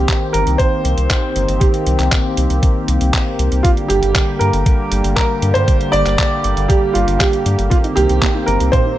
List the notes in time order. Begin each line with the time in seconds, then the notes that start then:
Already playing: D#3 A#3 C4 G4
0.09 kick, clap, closed hi-hat
0.33 G1 A#4, closed hi-hat
0.47 C2, closed hi-hat
0.58 C5, kick, closed hi-hat
0.85 C2, closed hi-hat
0.98 C2, closed hi-hat
1.10 kick, clap, closed hi-hat
1.36 G1, closed hi-hat
1.48 G1, closed hi-hat
1.60 G4, kick, closed hi-hat
1.74 closed hi-hat
1.87 C2, closed hi-hat
1.99 C2, clap, closed hi-hat
2.12 kick, clap, closed hi-hat
2.37 C2, closed hi-hat
2.50 C2, closed hi-hat
2.63 kick, closed hi-hat
2.88 C2, closed hi-hat
3.01 C2, closed hi-hat
3.14 kick, clap, closed hi-hat
3.39 C2, closed hi-hat
3.52 C2, closed hi-hat
3.63 D3 G3 F4, kick, closed hi-hat
3.77 closed hi-hat
3.88 G1 G4, closed hi-hat
4.03 G1, closed hi-hat
4.15 kick, clap, closed hi-hat
4.39 G2 A#4, closed hi-hat
4.53 G1, closed hi-hat
4.66 kick, closed hi-hat
4.92 G1, closed hi-hat
5.04 G1, closed hi-hat
5.16 A#4, kick, clap, closed hi-hat
5.42 G2, closed hi-hat
5.54 G2 C5, closed hi-hat
5.68 kick, closed hi-hat
5.81 closed hi-hat
5.92 G1 D5, closed hi-hat
6.06 G1, clap, closed hi-hat
6.19 kick, clap, closed hi-hat
6.44 G1, closed hi-hat
6.57 G1, closed hi-hat
6.68 G4, kick, closed hi-hat
6.94 G1 F4, closed hi-hat
7.08 G1, closed hi-hat
7.19 G4, kick, clap, closed hi-hat
7.33 closed hi-hat
7.46 G2, closed hi-hat
7.59 G1, closed hi-hat
7.70 D#3 A#3 C4 F4, kick, closed hi-hat
7.84 D#4, closed hi-hat
7.96 C2 A#3 G4, closed hi-hat
8.09 C2 G4, closed hi-hat
8.22 A#3, kick, clap, closed hi-hat
8.35 D#4
8.46 G1 A#3 A#4, closed hi-hat
8.60 C2 G4, closed hi-hat
8.72 A#3 C5, kick, closed hi-hat, high tom
8.86 D#4